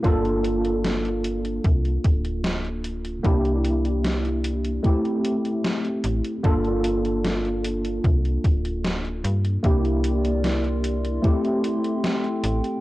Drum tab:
HH |xxxxxxxxxxxxxxxx|xxxxxxxxxxxxxxxx|xxxxxxxxxxxxxxxx|xxxxxxxxxxxxxxxx|
SD |----o-------o---|----o-------o---|----o-------o---|----o-------o---|
BD |o-------o-o-----|o-------o-------|o-------o-o-----|o-------o-------|